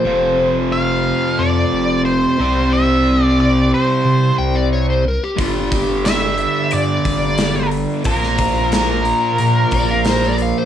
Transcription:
Already playing: electric slide guitar C5
0.04 sub bass F1, distorted electric guitar F2 C3 F3
0.72 lead electric guitar F5
1.39 sub bass F2, lead electric guitar D5
1.72 sub bass F1
2.05 lead electric guitar C5
2.38 sub bass C2, distorted electric guitar C3 G3 C4
2.73 lead electric guitar E5
3.24 lead electric guitar D5
3.40 lead electric guitar D5
3.74 lead electric guitar C5
4.05 sub bass C3
4.38 sub bass C2, electric slide guitar G5
4.55 electric slide guitar D5
4.73 electric slide guitar C#5
4.90 electric slide guitar C5
5.08 electric slide guitar A#4
5.24 electric slide guitar G4
5.37 sub bass G1, distorted electric guitar G2 D3 G3, kick, open hi-hat
5.41 electric slide guitar F4
5.72 electric slide guitar G4, kick, open hi-hat
6.05 lead electric guitar E5, snare, open hi-hat
6.38 open hi-hat
6.71 sub bass G2, lead electric guitar D5, open hi-hat
7.05 sub bass G1, kick, open hi-hat
7.38 snare, open hi-hat
7.71 open hi-hat
8.04 sub bass A#1, distorted electric guitar A#2 F3 A#3, lead electric guitar A#4, kick, open hi-hat
8.23 snare
8.38 kick, open hi-hat
8.72 lead electric guitar A#4, snare, open hi-hat
9.05 open hi-hat
9.38 sub bass A#2, open hi-hat
9.71 sub bass A#1, electric slide guitar D5, kick, open hi-hat
9.91 electric slide guitar F5
10.05 electric slide guitar C5, snare, open hi-hat
10.24 electric slide guitar D5
10.38 electric slide guitar F5, open hi-hat
10.58 electric slide guitar C5

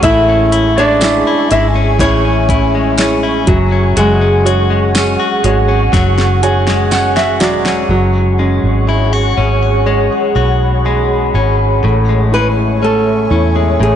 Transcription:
Already playing: clean electric guitar F#3 G#3 C#4, ambient pad C#6
0.03 fingered electric bass A1, upright piano A3, nylon-string guitar E4 E5, clean electric guitar E4, ambient pad G#4 E5 G#5, kick, closed hi-hat
0.29 clean electric guitar C#4
0.52 clean electric guitar E4, closed hi-hat
0.77 clean electric guitar G#3, nylon-string guitar D4 D5
1.01 upright piano E4 G#4 E5, snare, closed hi-hat, tambourine
1.27 clean electric guitar E4
1.51 fingered electric bass G#1, clean electric guitar G#3, nylon-string guitar E4 E5, closed hi-hat
1.75 clean electric guitar C#4
1.99 fingered electric bass A1, clean electric guitar A2 E4, nylon-string guitar C#4 C#5, upright piano E4 G#4 C#5, kick, closed hi-hat
2.25 clean electric guitar C#4
2.49 clean electric guitar E4, kick, closed hi-hat
2.75 clean electric guitar G#3
2.98 clean electric guitar C#4, upright piano E4 G#4 C#5, snare, closed hi-hat, tambourine
3.23 clean electric guitar E4
3.47 fingered electric bass F#1, upright piano F#3, clean electric guitar F#3, ambient pad G#4 F#5, kick, closed hi-hat
3.72 clean electric guitar C#4
3.97 fingered electric bass F#1, clean electric guitar F#3 F#4, nylon-string guitar G#3 G#4, closed hi-hat
4.21 clean electric guitar C#4
4.45 upright piano F#4 G#4 C#5, clean electric guitar F#4, closed hi-hat
4.70 clean electric guitar G#3
4.95 clean electric guitar C#4, snare, closed hi-hat, tambourine
5.20 clean electric guitar F#4
5.44 fingered electric bass G#1, clean electric guitar G#3, upright piano F#4 G#4 C#5, closed hi-hat
5.68 clean electric guitar C#4
5.93 fingered electric bass F#1, clean electric guitar F#3 F#4, kick, snare, closed hi-hat
6.18 clean electric guitar C#4, snare
6.42 upright piano F#4 G#4 C#5 G#5, clean electric guitar F#4, closed hi-hat
6.67 clean electric guitar G#3, snare
6.91 clean electric guitar C#4, upright piano F#5, snare, closed hi-hat, tambourine
7.16 clean electric guitar F#4, upright piano E5, snare
7.40 fingered electric bass E1, upright piano F#3 D5, clean electric guitar G#3, snare, closed hi-hat
7.66 clean electric guitar C#4, snare
7.89 fingered electric bass F#1, upright piano F#3, clean electric guitar F#3, ambient pad G#4 C#5 F#5 C#6
8.39 clean electric guitar G#3, upright piano C#4
8.64 fingered electric bass G#1
8.87 clean electric guitar E4, upright piano G#4
9.13 clean electric guitar F#4
9.38 fingered electric bass G#1, clean electric guitar C#4
9.86 clean electric guitar G#3, upright piano C#5, ambient pad B5
10.35 fingered electric bass B1, clean electric guitar F#4
10.85 clean electric guitar G#3, upright piano G#4
11.34 fingered electric bass G#1, clean electric guitar C#4
11.82 fingered electric bass A1, clean electric guitar A2, upright piano A3, ambient pad C#5 E5 G#5 C#6
12.09 clean electric guitar G#3
12.32 clean electric guitar C#4, upright piano E4, nylon-string guitar B4
12.82 upright piano A3, clean electric guitar C#4, nylon-string guitar A4
13.31 fingered electric bass E2, clean electric guitar C#4, upright piano E4
13.56 clean electric guitar G#3
13.79 fingered electric bass A1, clean electric guitar A2, upright piano A3, nylon-string guitar G#4

